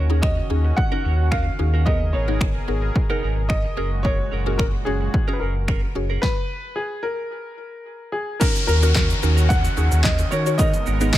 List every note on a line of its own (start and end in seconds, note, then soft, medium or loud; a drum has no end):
0.00 0.40 D#2 medium
0.00 1.82 D#3 medium
0.00 1.84 C#4 medium
0.00 1.84 F#4 medium
0.00 0.24 C#5 medium
0.10 0.29 C#4 medium
0.10 0.22 C#4 medium
0.10 0.29 D#4 medium
0.10 0.29 F#4 medium
0.10 0.22 F#4 medium
0.10 0.30 G#4 medium
0.10 0.23 A#4 medium
0.22 0.79 D#5 medium
0.22 finger snap loud
0.22 muted clean electric guitar stroke soft
0.22 kick loud
0.37 muted clean electric guitar stroke soft
0.50 0.72 D#2 medium
0.50 0.70 C#4 medium
0.50 0.70 D#4 medium
0.50 0.70 F#4 medium
0.50 0.70 G#4 medium
0.65 muted clean electric guitar stroke medium
0.77 1.33 F#5 loud
0.77 muted clean electric guitar stroke soft
0.77 kick loud
0.92 1.24 C#4 medium
0.92 1.03 C#4 medium
0.92 1.24 D#4 medium
0.92 1.25 F#4 medium
0.92 1.04 F#4 medium
0.92 1.05 A#4 medium
0.92 1.25 A#4 medium
1.04 1.49 D#2 medium
1.04 1.19 C#4 medium
1.04 1.19 F#4 medium
1.04 1.18 A#4 medium
1.19 muted clean electric guitar stroke soft
1.31 1.50 C#4 medium
1.31 1.46 F#4 medium
1.31 1.45 A#4 medium
1.31 1.82 F5 loud
1.31 finger snap loud
1.31 kick medium
1.46 muted clean electric guitar stroke soft
1.59 2.15 D#2 medium
1.59 1.73 C#4 medium
1.59 1.73 D#4 medium
1.59 1.73 F#4 medium
1.59 1.73 G#4 medium
1.59 muted clean electric guitar stroke soft
1.74 1.86 C#4 medium
1.74 1.87 F#4 medium
1.74 1.87 A#4 medium
1.85 3.75 B2 medium
1.85 2.06 B3 medium
1.85 2.04 B3 medium
1.85 2.06 D#4 medium
1.85 2.01 D#4 medium
1.85 2.07 G#4 medium
1.85 3.76 G#4 medium
1.85 2.07 A#4 medium
1.85 3.76 A#4 medium
1.85 1.99 A#4 medium
1.85 2.14 D#5 medium
1.85 kick loud
2.01 muted clean electric guitar stroke soft
2.13 2.58 G#1 medium
2.13 2.28 B3 medium
2.13 2.28 D#4 medium
2.13 2.27 A#4 medium
2.13 2.64 C#5 medium
2.28 2.47 B3 medium
2.28 2.40 B3 medium
2.28 2.47 D#4 medium
2.28 2.40 D#4 medium
2.28 2.48 G#4 medium
2.28 2.41 A#4 medium
2.28 2.48 A#4 medium
2.41 finger snap loud
2.41 muted clean electric guitar stroke soft
2.41 kick loud
2.55 muted clean electric guitar stroke soft
2.68 2.90 G#1 medium
2.68 2.88 B3 medium
2.68 2.88 D#4 medium
2.68 2.88 G#4 medium
2.68 2.89 A#4 medium
2.82 muted clean electric guitar stroke soft
2.95 muted clean electric guitar stroke soft
2.95 kick loud
3.10 3.42 B3 medium
3.10 3.21 B3 medium
3.10 3.43 D#4 medium
3.10 3.22 D#4 medium
3.10 3.43 G#4 medium
3.10 3.23 A#4 medium
3.10 3.43 A#4 loud
3.23 3.67 G#1 medium
3.23 3.37 B3 medium
3.23 3.37 D#4 medium
3.23 3.36 A#4 medium
3.37 muted clean electric guitar stroke soft
3.49 4.06 D#5 loud
3.49 finger snap loud
3.49 muted clean electric guitar stroke soft
3.49 kick loud
3.65 muted clean electric guitar stroke soft
3.77 4.22 F#1 loud
3.77 6.20 A#2 medium
3.77 6.20 G#3 medium
3.77 3.95 C#4 medium
3.77 4.32 C#4 medium
3.77 4.32 F#4 medium
3.77 6.20 F#4 medium
3.77 4.32 G#4 medium
3.77 3.92 G#4 medium
3.77 4.32 A#4 medium
3.77 3.90 A#4 medium
3.92 muted clean electric guitar stroke soft
4.03 4.23 C#4 medium
4.03 4.19 G#4 medium
4.03 4.18 A#4 medium
4.03 4.60 C#5 loud
4.03 kick medium
4.19 muted clean electric guitar stroke soft
4.32 4.76 F#1 medium
4.32 4.46 C#4 medium
4.32 4.46 G#4 medium
4.32 4.45 A#4 medium
4.46 4.66 C#4 medium
4.46 4.58 C#4 medium
4.46 4.66 F#4 medium
4.46 4.66 G#4 medium
4.46 4.58 G#4 medium
4.46 4.59 A#4 medium
4.46 4.66 A#4 medium
4.58 4.64 A#4 medium
4.58 finger snap loud
4.58 kick loud
4.74 muted clean electric guitar stroke soft
4.85 5.09 F#1 medium
4.85 5.07 C#4 medium
4.85 5.07 F#4 medium
4.85 5.35 G#4 medium
4.85 5.07 G#4 medium
4.85 5.07 C#5 medium
5.01 muted clean electric guitar stroke soft
5.14 muted clean electric guitar stroke soft
5.14 kick loud
5.28 5.61 C#4 medium
5.28 5.39 C#4 medium
5.28 5.61 F#4 medium
5.28 5.61 G#4 medium
5.28 5.40 G#4 medium
5.28 5.41 A#4 medium
5.28 5.61 A#4 medium
5.33 5.40 B4 medium
5.39 5.85 F#1 medium
5.39 5.55 C#4 medium
5.39 5.55 G#4 medium
5.39 5.91 A#4 medium
5.39 5.54 A#4 medium
5.55 muted clean electric guitar stroke soft
5.68 5.86 C#4 medium
5.68 5.83 G#4 medium
5.68 5.81 A#4 medium
5.68 finger snap loud
5.68 kick loud
5.83 muted clean electric guitar stroke soft
5.95 6.18 F#1 loud
5.95 6.09 C#4 medium
5.95 6.10 F#4 medium
5.95 6.10 G#4 medium
5.95 6.10 C#5 medium
5.95 muted clean electric guitar stroke soft
6.10 6.24 C#4 soft
6.10 6.23 G#4 medium
6.10 6.23 A#4 medium
6.22 6.78 B4 loud
6.22 kick loud
6.22 snare medium
6.76 7.05 G#4 medium
7.03 8.09 A#4 loud
8.12 8.41 G#4 medium
8.40 10.57 D#3 medium
8.40 8.59 C#4 medium
8.40 8.61 C#4 medium
8.40 10.57 C#4 medium
8.40 8.61 D#4 medium
8.40 10.57 F#4 medium
8.40 8.61 F#4 medium
8.40 8.55 F#4 medium
8.40 8.66 A#4 medium
8.40 8.62 A#4 medium
8.40 8.54 A#4 medium
8.40 kick loud
8.40 closed hi-hat medium
8.40 crash loud
8.40 downlifter medium
8.40 shaker medium
8.56 muted clean electric guitar stroke soft
8.56 closed hi-hat soft
8.56 shaker soft
8.67 9.13 D#2 medium
8.67 8.83 C#4 medium
8.67 8.82 F#4 medium
8.67 9.52 A#4 loud
8.67 8.81 A#4 medium
8.67 shaker soft
8.82 9.02 C#4 medium
8.82 8.94 C#4 medium
8.82 9.02 D#4 medium
8.82 9.02 F#4 medium
8.82 8.95 F#4 medium
8.82 8.96 A#4 medium
8.82 9.02 A#4 medium
8.82 closed hi-hat medium
8.82 shaker medium
8.95 9.13 C#4 medium
8.95 9.10 F#4 medium
8.95 9.09 A#4 loud
8.95 kick loud
8.95 snare medium
8.95 clap loud
8.95 closed hi-hat medium
8.95 shaker medium
9.10 muted clean electric guitar stroke soft
9.10 closed hi-hat medium
9.10 shaker medium
9.22 9.67 D#2 loud
9.22 9.49 C#4 medium
9.22 9.49 D#4 medium
9.22 9.49 F#4 medium
9.22 9.49 A#4 medium
9.22 muted clean electric guitar stroke soft
9.22 shaker medium
9.37 9.48 C#4 soft
9.37 9.49 F#4 medium
9.37 9.50 A#4 medium
9.37 closed hi-hat soft
9.37 shaker medium
9.49 10.00 F#5 loud
9.49 muted clean electric guitar stroke soft
9.49 kick loud
9.49 closed hi-hat medium
9.49 shaker medium
9.64 muted clean electric guitar stroke medium
9.64 closed hi-hat medium
9.64 shaker medium
9.77 9.89 D#2 medium
9.77 10.11 C#4 medium
9.77 10.11 D#4 medium
9.77 10.11 F#4 medium
9.77 10.11 G#4 medium
9.77 shaker medium
9.92 10.24 D#2 loud
9.92 muted clean electric guitar stroke soft
9.92 closed hi-hat medium
9.92 shaker medium
10.03 10.29 D#5 loud
10.03 muted clean electric guitar stroke soft
10.03 kick loud
10.03 snare medium
10.03 clap loud
10.03 closed hi-hat medium
10.03 shaker medium
10.19 muted clean electric guitar stroke soft
10.19 closed hi-hat medium
10.19 shaker medium
10.31 10.76 D#3 medium
10.31 10.47 C#4 medium
10.31 10.46 F#4 medium
10.31 10.45 A#4 medium
10.31 10.59 C#5 loud
10.31 shaker medium
10.46 10.59 C#4 medium
10.46 10.53 F#4 medium
10.46 10.60 F#4 medium
10.46 10.59 A#4 medium
10.46 10.53 C#5 medium
10.46 closed hi-hat medium
10.46 shaker medium
10.58 11.18 G#3 medium
10.58 10.77 B3 medium
10.58 10.79 B3 medium
10.58 11.18 B3 medium
10.58 10.80 D#4 medium
10.58 10.74 D#4 medium
10.58 10.80 G#4 medium
10.58 11.18 A#4 medium
10.58 10.80 A#4 medium
10.58 10.72 A#4 medium
10.58 11.11 D#5 loud
10.58 kick loud
10.58 closed hi-hat medium
10.58 shaker medium
10.73 muted clean electric guitar stroke soft
10.73 closed hi-hat soft
10.73 shaker soft
10.86 11.18 G#1 medium
10.86 11.01 B3 medium
10.86 11.00 D#4 medium
10.86 10.99 A#4 medium
10.86 shaker medium
11.00 11.18 B3 medium
11.00 11.12 B3 medium
11.00 11.18 D#4 medium
11.00 11.13 D#4 medium
11.00 11.18 G#4 medium
11.00 11.14 A#4 medium
11.00 11.18 B4 medium
11.00 closed hi-hat medium
11.00 shaker medium
11.13 11.18 B3 medium
11.13 11.18 A#4 loud
11.13 11.18 D#5 medium
11.13 kick loud
11.13 snare medium
11.13 clap loud
11.13 closed hi-hat medium
11.13 shaker medium